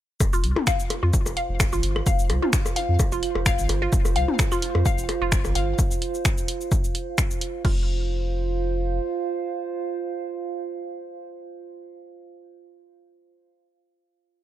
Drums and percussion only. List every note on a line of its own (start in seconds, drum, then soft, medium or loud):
0.20 kick loud
0.20 percussion blips soft
0.20 cabasa medium
0.33 cabasa soft
0.44 open hi-hat medium
0.56 mid tom medium
0.56 percussion blips soft
0.67 finger snap loud
0.67 kick loud
0.67 cabasa medium
0.67 claves medium
0.80 cabasa soft
0.90 open hi-hat medium
0.90 percussion blips soft
1.13 kick loud
1.13 cabasa medium
1.26 percussion blips soft
1.26 cabasa soft
1.37 open hi-hat medium
1.60 finger snap loud
1.60 kick loud
1.60 percussion blips soft
1.60 cabasa medium
1.73 cabasa soft
1.83 open hi-hat medium
1.96 percussion blips soft
1.96 claves medium
2.06 kick loud
2.06 cabasa medium
2.19 cabasa soft
2.30 open hi-hat medium
2.30 percussion blips soft
2.42 mid tom medium
2.53 finger snap loud
2.53 kick loud
2.53 cabasa medium
2.66 percussion blips soft
2.66 cabasa soft
2.76 open hi-hat medium
2.99 kick loud
2.99 percussion blips soft
2.99 cabasa medium
3.12 cabasa soft
3.23 open hi-hat loud
3.23 claves medium
3.35 percussion blips soft
3.46 finger snap loud
3.46 kick loud
3.46 cabasa medium
3.59 cabasa soft
3.69 open hi-hat loud
3.69 percussion blips soft
3.93 kick loud
3.93 cabasa medium
4.05 percussion blips soft
4.05 cabasa soft
4.16 open hi-hat medium
4.28 mid tom medium
4.39 finger snap medium
4.39 kick loud
4.39 percussion blips soft
4.39 cabasa medium
4.52 cabasa soft
4.52 claves medium
4.62 open hi-hat loud
4.75 percussion blips soft
4.86 kick loud
4.86 cabasa medium
4.98 cabasa soft
5.09 open hi-hat loud
5.09 percussion blips soft
5.32 finger snap loud
5.32 kick loud
5.32 cabasa medium
5.45 percussion blips soft
5.45 cabasa soft
5.55 open hi-hat loud
5.79 kick loud
5.79 cabasa medium
5.91 cabasa soft
6.02 open hi-hat loud
6.14 cabasa soft
6.25 finger snap loud
6.25 kick loud
6.25 cabasa medium
6.38 cabasa soft
6.48 open hi-hat loud
6.61 cabasa soft
6.72 kick loud
6.72 cabasa medium
6.84 cabasa soft
6.95 open hi-hat loud
7.18 finger snap medium
7.18 kick loud
7.18 cabasa medium
7.31 cabasa soft
7.41 open hi-hat loud
7.65 kick loud
7.65 crash medium